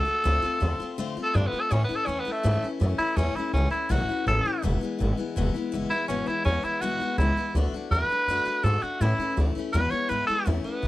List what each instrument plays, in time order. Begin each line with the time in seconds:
Already playing: tenor saxophone A4
0.05 steel-string acoustic guitar A3 D4 F#4, muted upright bass stroke
0.24 upright bass D2, steel-string acoustic guitar D3 A3 C4 F4
0.42 steel-string acoustic guitar A3 C4 F4, muted upright bass stroke
0.60 upright bass E2, steel-string acoustic guitar D3 A3 C4 F4
0.80 steel-string acoustic guitar A3 C4 F4, muted upright bass stroke
0.98 upright bass F2, steel-string acoustic guitar D3 A3 C4 F4
1.16 steel-string acoustic guitar A3 C4 F4, muted upright bass stroke
1.23 tenor saxophone A4
1.34 upright bass G2, steel-string acoustic guitar D3 A3 C4 F4, tenor saxophone D4
1.47 tenor saxophone B3
1.52 steel-string acoustic guitar A3 C4 F4, muted upright bass stroke
1.60 tenor saxophone A4
1.71 steel-string acoustic guitar A2 E3 A3 C#4 E4, upright bass A2, tenor saxophone C#4
1.84 tenor saxophone B3
1.89 steel-string acoustic guitar A3 C#4 E4, muted upright bass stroke
1.96 tenor saxophone A4
2.06 upright bass E2, steel-string acoustic guitar E3 A3 C#4 E4, tenor saxophone C#4
2.20 tenor saxophone B3
2.25 steel-string acoustic guitar A3 C#4 E4, muted upright bass stroke
2.31 tenor saxophone A3
2.43 upright bass G#2, steel-string acoustic guitar A2 E3 A3 C#4 E4
2.62 steel-string acoustic guitar A3 C#4 E4, muted upright bass stroke
2.80 upright bass F#2, steel-string acoustic guitar E3 A3 C#4 E4
2.98 steel-string acoustic guitar A3 C#4 E4, tenor saxophone E4, muted upright bass stroke
3.17 upright bass E2, steel-string acoustic guitar A2 E3 A3 C#4 E4, tenor saxophone C#4
3.35 steel-string acoustic guitar A3 C#4 E4, tenor saxophone E4, muted upright bass stroke
3.53 upright bass C#2, steel-string acoustic guitar E3 A3 C#4 E4, tenor saxophone C#4
3.70 steel-string acoustic guitar A3 C#4 E4, tenor saxophone E4, muted upright bass stroke
3.89 upright bass B1, steel-string acoustic guitar A2 E3 A3 C#4 E4, tenor saxophone F#4
4.08 steel-string acoustic guitar A3 C#4 E4, muted upright bass stroke
4.27 upright bass A1, steel-string acoustic guitar E3 A3 C#4 E4, tenor saxophone A4
4.45 steel-string acoustic guitar A3 C#4 E4, muted upright bass stroke
4.62 upright bass E1, steel-string acoustic guitar E2 B2 E3 G#3 B3 E4
4.81 steel-string acoustic guitar E3 G#3 B3 E4, muted upright bass stroke
4.99 upright bass G#1, steel-string acoustic guitar E3 G#3 B3 E4
5.17 steel-string acoustic guitar E3 G#3 B3 E4, muted upright bass stroke
5.36 upright bass E1, steel-string acoustic guitar E2 B2 E3 G#3 B3 E4
5.54 steel-string acoustic guitar E3 G#3 B3 E4, muted upright bass stroke
5.72 upright bass F#1, steel-string acoustic guitar E3 G#3 B3 E4
5.90 steel-string acoustic guitar B3, tenor saxophone E4, muted upright bass stroke
5.94 steel-string acoustic guitar E3 G#3
6.08 upright bass G#1, steel-string acoustic guitar E2 B2 E3 G#3 B3 E4, tenor saxophone C#4
6.26 steel-string acoustic guitar E3 G#3 B3 E4, tenor saxophone E4, muted upright bass stroke
6.45 upright bass E2, steel-string acoustic guitar E3 G#3 B3 E4, tenor saxophone C#4
6.63 steel-string acoustic guitar E3 G#3 B3 E4, tenor saxophone E4, muted upright bass stroke
6.81 upright bass B1, steel-string acoustic guitar E2 B2 E3 G#3 B3 E4, tenor saxophone F#4
7.00 steel-string acoustic guitar E3 G#3 B3 E4, muted upright bass stroke
7.18 upright bass C#2, steel-string acoustic guitar E3 G#3 B3 E4, tenor saxophone E4
7.36 steel-string acoustic guitar E3 G#3 B3 E4, muted upright bass stroke
7.55 upright bass D2, steel-string acoustic guitar D3 A3 D4 F#4
7.73 steel-string acoustic guitar D4 F#4, muted upright bass stroke
7.77 steel-string acoustic guitar A3
7.91 upright bass E2, steel-string acoustic guitar D3 A3 D4 F#4, tenor saxophone B4
8.09 steel-string acoustic guitar A3 D4 F#4, muted upright bass stroke
8.27 upright bass F#2, steel-string acoustic guitar D3 A3 D4 F#4
8.45 steel-string acoustic guitar A3 D4 F#4, muted upright bass stroke
8.63 upright bass G#2, steel-string acoustic guitar D3 A3 D4 F#4, tenor saxophone A4
8.82 steel-string acoustic guitar A3 D4 F#4, tenor saxophone F#4, muted upright bass stroke
9.01 steel-string acoustic guitar A2 E3 A3 C#4 E4, upright bass A2, tenor saxophone E4
9.19 steel-string acoustic guitar A3 C#4 E4, muted upright bass stroke
9.37 upright bass D2, steel-string acoustic guitar E3 A3 C#4 E4
9.55 steel-string acoustic guitar A3 C#4 E4, muted upright bass stroke
9.73 steel-string acoustic guitar E2 B2 E3 G#3 B3 E4, upright bass E2, tenor saxophone B4
9.90 steel-string acoustic guitar E3 G#3 B3 E4, tenor saxophone C#5, muted upright bass stroke
10.09 upright bass G#2, steel-string acoustic guitar E3 G#3 B3 E4, tenor saxophone B4
10.27 steel-string acoustic guitar G#3 B3 E4, tenor saxophone A4, muted upright bass stroke
10.31 steel-string acoustic guitar E3
10.46 upright bass E2, steel-string acoustic guitar A2 E3 A3 C#4 E4
10.64 steel-string acoustic guitar A3 C#4 E4, tenor saxophone B3, muted upright bass stroke
10.82 upright bass B1, steel-string acoustic guitar E3 A3